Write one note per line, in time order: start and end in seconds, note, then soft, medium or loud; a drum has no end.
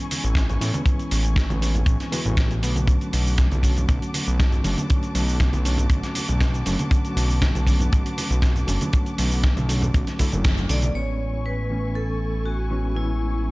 0.00 0.58 E3 medium
0.00 0.58 G#3 medium
0.00 0.59 B3 medium
0.00 0.59 C#4 medium
0.00 2.59 E4 medium
0.00 2.59 G#5 medium
0.00 2.59 C#6 medium
0.11 open hi-hat loud
0.11 high conga medium
0.11 shaker medium
0.24 0.58 A1 medium
0.24 closed hi-hat soft
0.24 shaker soft
0.35 kick loud
0.35 snare loud
0.35 closed hi-hat medium
0.35 shaker soft
0.50 closed hi-hat soft
0.50 low conga medium
0.50 shaker soft
0.61 0.72 A2 medium
0.61 0.83 E3 medium
0.61 0.84 G#3 medium
0.61 0.84 B3 medium
0.61 0.84 C#4 medium
0.61 open hi-hat medium
0.61 shaker medium
0.74 closed hi-hat soft
0.74 high conga loud
0.74 shaker soft
0.85 1.59 E3 medium
0.85 1.59 G#3 medium
0.85 1.59 B3 medium
0.85 1.60 C#4 medium
0.85 kick loud
0.85 closed hi-hat medium
0.85 shaker soft
1.00 closed hi-hat soft
1.00 shaker soft
1.11 1.47 A1 loud
1.11 open hi-hat loud
1.11 shaker medium
1.25 closed hi-hat soft
1.25 shaker soft
1.36 kick loud
1.36 snare loud
1.36 closed hi-hat medium
1.36 shaker soft
1.50 1.84 A1 loud
1.50 closed hi-hat soft
1.50 high conga medium
1.50 shaker soft
1.62 2.10 E3 medium
1.62 2.10 G#3 medium
1.62 2.10 B3 medium
1.62 2.10 C#4 medium
1.62 open hi-hat medium
1.62 shaker medium
1.75 closed hi-hat soft
1.75 low conga medium
1.75 shaker soft
1.86 1.98 A1 medium
1.86 kick loud
1.86 closed hi-hat medium
1.86 shaker soft
2.00 snare soft
2.00 closed hi-hat soft
2.00 shaker soft
2.12 2.60 E3 loud
2.12 2.60 G#3 medium
2.12 2.60 B3 medium
2.12 2.60 F#4 loud
2.12 open hi-hat loud
2.12 high conga medium
2.12 shaker medium
2.25 2.64 A1 loud
2.25 closed hi-hat soft
2.25 low conga medium
2.25 shaker soft
2.37 kick loud
2.37 snare loud
2.37 closed hi-hat medium
2.37 shaker soft
2.51 closed hi-hat soft
2.51 shaker soft
2.62 2.98 B1 medium
2.62 2.85 D3 medium
2.62 2.85 F#3 medium
2.62 2.85 A3 medium
2.62 2.85 B3 medium
2.62 10.91 B3 medium
2.62 10.91 F#4 medium
2.62 10.91 A5 medium
2.62 10.91 D6 medium
2.62 open hi-hat medium
2.62 shaker medium
2.76 closed hi-hat soft
2.76 high conga medium
2.76 shaker soft
2.87 3.60 D3 medium
2.87 3.61 F#3 medium
2.87 3.61 A3 medium
2.87 3.61 C#4 medium
2.87 kick loud
2.87 closed hi-hat medium
2.87 shaker soft
3.01 closed hi-hat soft
3.01 shaker soft
3.13 3.48 B1 loud
3.13 open hi-hat medium
3.13 shaker medium
3.27 shaker soft
3.38 kick loud
3.38 snare loud
3.38 closed hi-hat medium
3.38 shaker soft
3.51 3.86 B1 medium
3.51 closed hi-hat soft
3.51 high conga medium
3.51 shaker soft
3.63 4.61 D3 medium
3.63 4.62 F#3 medium
3.63 4.62 A3 medium
3.63 4.62 C#4 medium
3.63 kick medium
3.63 open hi-hat medium
3.63 shaker medium
3.77 closed hi-hat soft
3.77 low conga medium
3.77 shaker soft
3.89 4.00 B1 loud
3.89 kick loud
3.89 closed hi-hat medium
3.89 shaker soft
4.02 closed hi-hat soft
4.02 shaker soft
4.14 open hi-hat loud
4.14 high conga medium
4.14 shaker medium
4.27 4.62 B1 medium
4.27 closed hi-hat soft
4.27 shaker soft
4.40 kick loud
4.40 snare loud
4.40 closed hi-hat medium
4.40 shaker soft
4.51 closed hi-hat soft
4.51 low conga medium
4.51 shaker soft
4.64 4.75 F#1 medium
4.64 4.86 D3 medium
4.64 4.87 F#3 medium
4.64 4.87 A3 medium
4.64 4.87 C#4 medium
4.64 open hi-hat medium
4.64 shaker medium
4.77 closed hi-hat soft
4.77 high conga medium
4.77 shaker soft
4.89 5.62 D3 medium
4.89 5.62 F#3 medium
4.89 5.63 A3 medium
4.89 5.63 C#4 medium
4.89 kick loud
4.89 closed hi-hat medium
4.89 shaker soft
5.03 closed hi-hat soft
5.03 shaker soft
5.15 5.50 B1 loud
5.15 open hi-hat medium
5.15 shaker medium
5.28 shaker soft
5.40 kick loud
5.40 snare loud
5.40 closed hi-hat medium
5.40 shaker soft
5.52 5.87 B1 loud
5.52 closed hi-hat soft
5.52 high conga medium
5.52 shaker soft
5.64 6.63 D3 medium
5.64 6.63 F#3 medium
5.64 6.63 A3 medium
5.64 6.64 C#4 medium
5.64 open hi-hat medium
5.64 shaker medium
5.78 closed hi-hat soft
5.78 low conga medium
5.78 shaker soft
5.90 6.01 B1 loud
5.90 kick loud
5.90 closed hi-hat medium
5.90 shaker soft
6.03 snare soft
6.03 closed hi-hat soft
6.03 shaker soft
6.15 open hi-hat loud
6.15 high conga medium
6.15 shaker medium
6.29 6.63 B1 medium
6.29 closed hi-hat soft
6.29 low conga medium
6.29 shaker soft
6.41 kick loud
6.41 snare loud
6.41 closed hi-hat medium
6.41 shaker medium
6.54 closed hi-hat soft
6.54 shaker soft
6.66 6.77 F#1 medium
6.66 6.88 D3 medium
6.66 6.89 F#3 medium
6.66 6.89 A3 medium
6.66 6.89 C#4 medium
6.66 open hi-hat medium
6.66 shaker medium
6.79 closed hi-hat soft
6.79 high conga medium
6.79 shaker soft
6.91 7.64 D3 medium
6.91 7.64 F#3 medium
6.91 7.64 A3 medium
6.91 7.65 C#4 medium
6.91 kick loud
6.91 closed hi-hat medium
6.91 shaker soft
7.05 closed hi-hat soft
7.05 shaker soft
7.16 7.51 B1 loud
7.16 open hi-hat loud
7.16 shaker medium
7.30 shaker soft
7.42 kick loud
7.42 snare loud
7.42 closed hi-hat medium
7.42 shaker soft
7.55 7.89 B1 loud
7.55 closed hi-hat soft
7.55 high conga medium
7.55 shaker soft
7.66 8.64 D3 medium
7.66 8.65 F#3 medium
7.66 8.65 A3 medium
7.66 8.65 C#4 medium
7.66 kick medium
7.66 open hi-hat medium
7.66 shaker medium
7.80 closed hi-hat soft
7.80 low conga medium
7.80 shaker soft
7.93 8.04 B1 medium
7.93 kick loud
7.93 closed hi-hat medium
7.93 shaker soft
8.06 closed hi-hat medium
8.06 shaker soft
8.18 open hi-hat medium
8.18 high conga medium
8.18 shaker medium
8.30 8.65 B1 medium
8.30 closed hi-hat soft
8.30 shaker soft
8.42 kick loud
8.42 snare loud
8.42 closed hi-hat medium
8.42 shaker soft
8.55 closed hi-hat soft
8.55 low conga medium
8.55 shaker soft
8.67 8.79 F#1 medium
8.67 8.90 D3 medium
8.67 8.90 F#3 medium
8.67 8.90 A3 medium
8.67 8.91 C#4 loud
8.67 open hi-hat medium
8.67 shaker medium
8.81 closed hi-hat soft
8.81 high conga medium
8.81 shaker soft
8.92 9.66 D3 medium
8.92 9.66 F#3 medium
8.92 9.66 A3 medium
8.92 9.67 C#4 medium
8.92 kick loud
8.92 closed hi-hat medium
8.92 shaker soft
9.06 closed hi-hat soft
9.06 shaker soft
9.18 9.53 B1 loud
9.18 open hi-hat loud
9.18 shaker medium
9.32 shaker soft
9.44 kick loud
9.44 snare loud
9.44 closed hi-hat medium
9.44 shaker soft
9.56 9.91 B1 loud
9.56 closed hi-hat soft
9.56 high conga medium
9.56 shaker soft
9.68 10.17 D3 medium
9.68 10.17 F#3 medium
9.68 10.17 A3 medium
9.68 10.17 C#4 medium
9.68 open hi-hat medium
9.68 shaker medium
9.82 closed hi-hat soft
9.82 low conga medium
9.82 shaker soft
9.94 10.05 B1 loud
9.94 kick loud
9.94 closed hi-hat medium
9.94 shaker soft
10.07 snare soft
10.07 closed hi-hat medium
10.07 shaker soft
10.19 10.67 D3 loud
10.19 10.67 F#3 medium
10.19 10.67 A3 medium
10.19 10.67 E4 loud
10.19 kick medium
10.19 open hi-hat medium
10.19 high conga medium
10.19 shaker medium
10.32 10.67 F#1 loud
10.32 closed hi-hat soft
10.32 low conga medium
10.32 shaker soft
10.44 kick loud
10.44 snare loud
10.44 closed hi-hat medium
10.44 shaker soft
10.58 closed hi-hat soft
10.58 shaker soft
10.69 10.91 B1 medium
10.69 10.92 D3 medium
10.69 10.92 F#3 medium
10.69 10.92 A3 medium
10.69 10.93 B3 medium
10.69 10.96 D5 loud
10.69 open hi-hat medium
10.69 shaker medium
10.82 closed hi-hat medium
10.82 high conga medium
10.82 shaker soft
10.95 13.51 A1 medium
10.95 11.68 E3 medium
10.95 11.68 G#3 medium
10.95 11.68 B3 medium
10.95 11.68 C#4 medium
10.95 13.51 E4 medium
10.95 11.47 C#5 loud
10.95 13.51 G#5 medium
10.95 13.51 C#6 medium
11.46 11.97 B4 medium
11.70 12.68 E3 medium
11.70 12.68 A3 medium
11.70 12.69 B3 medium
11.70 12.69 C#4 medium
11.95 12.48 A4 medium
12.46 12.98 F#4 medium
12.71 12.93 E3 medium
12.71 12.94 G#3 medium
12.71 12.94 B3 medium
12.71 12.94 C#4 medium
12.96 13.51 E3 medium
12.96 13.51 G#3 medium
12.96 13.51 B3 medium
12.96 13.51 C#4 medium
12.96 13.51 E4 medium